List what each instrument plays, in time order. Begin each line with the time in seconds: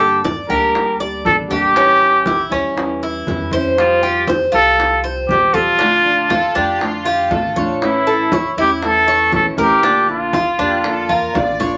Already playing: upright bass G1, nylon-string guitar D3 G3 A#3 D4 A4, trumpet G4
0.00 cuban tres A4, high bongo, high conga
0.24 cuban tres D5, muted nylon-string guitar stroke, high bongo, high conga
0.49 upright bass D2, nylon-string guitar G3 A#3 D4 A4, cuban tres G4, trumpet A#4, high bongo, high conga
0.74 nylon-string guitar G3 A#3 D4 A4, high bongo, high conga
1.00 cuban tres D5, high bongo, high conga
1.25 upright bass A1, nylon-string guitar G3 A#3 D4 A4, trumpet A4, high bongo, low bongo, high conga
1.50 nylon-string guitar G3 A#3 D4 A4, cuban tres G4, trumpet G4, high conga
1.75 nylon-string guitar E3 G3 E4, cuban tres C#4, high bongo, high conga
2.01 high bongo, high conga
2.25 cuban tres E4, muted nylon-string guitar stroke, high bongo, high conga
2.50 upright bass E2, nylon-string guitar G3 C#4 E4, cuban tres C#4, high bongo
2.76 nylon-string guitar E3 G3 C#4 E4, high bongo, high conga
3.02 cuban tres E4, high bongo, high conga
3.27 upright bass F2, nylon-string guitar E3 G3 C#4 E4, high bongo, low bongo, high conga
3.51 nylon-string guitar G3 C#4 E4, cuban tres C5, high conga
3.77 nylon-string guitar F3 G3 C4 G4, trumpet F4, high bongo, high conga
4.03 cuban tres G4, high bongo, high conga
4.27 cuban tres C5, muted nylon-string guitar stroke, high bongo, high conga
4.52 upright bass C2, nylon-string guitar G3 C4 G4, cuban tres F4, trumpet A4, high bongo, high conga
4.78 nylon-string guitar F3 G3 C4 G4, high bongo, high conga
5.04 cuban tres C5, high bongo, high conga
5.29 upright bass A#1, nylon-string guitar F3 G3 C4 G4, trumpet G4, high bongo, low bongo, high conga
5.54 nylon-string guitar C4 G4, trumpet F4, cuban tres A4, high conga
5.58 nylon-string guitar G3
5.79 nylon-string guitar D3 A3 D4, cuban tres D4, high bongo, high conga
5.83 nylon-string guitar F4
6.05 violin section D4, high bongo, high conga
6.30 cuban tres F4, violin section A4, muted nylon-string guitar stroke, high bongo, high conga
6.55 upright bass F2, nylon-string guitar A3 D4 F4, cuban tres D4, violin section G4, high bongo
6.81 nylon-string guitar D3 A3 D4 F4, violin section F4, high bongo, high conga
7.05 cuban tres F4, violin section G4, high bongo, high conga
7.31 upright bass A1, nylon-string guitar D3 A3 D4 F4, violin section A4, high bongo, low bongo, high conga
7.56 nylon-string guitar A3 D4 F4, cuban tres C#5, high conga
7.82 nylon-string guitar E3 A3 C#4 E4, trumpet E4, high bongo, high conga
8.07 cuban tres A4, high bongo, high conga
8.32 cuban tres C#5, muted nylon-string guitar stroke, high bongo, high conga
8.57 upright bass E2, nylon-string guitar A3 C#4 E4, cuban tres E4, trumpet G4, high bongo, high conga
8.83 nylon-string guitar E3 A3 C#4 E4, trumpet A4, high bongo, high conga
9.07 cuban tres C#5, high bongo, high conga
9.32 upright bass A#1, nylon-string guitar E3 A3 C#4 E4, trumpet A4, high bongo, low bongo, high conga
9.57 nylon-string guitar A3 C#4 E4, trumpet G4, cuban tres A#4, high conga
9.83 nylon-string guitar D3 A#3 D4 F4, cuban tres D4, high bongo, high conga
10.08 trumpet F4, high bongo, high conga
10.33 cuban tres F4, muted nylon-string guitar stroke, high bongo, high conga
10.58 upright bass F2, nylon-string guitar A#3 D4 F4, cuban tres D4, violin section G4, high bongo
10.84 nylon-string guitar D3 A#3 D4 F4, violin section A4, high bongo, high conga
11.09 cuban tres F4, violin section A#4, high bongo, high conga
11.34 upright bass A1, nylon-string guitar D3 A#3 D4 F4, violin section D5, high bongo, low bongo, low conga
11.60 nylon-string guitar A#3 D4 F4, cuban tres C#5, low conga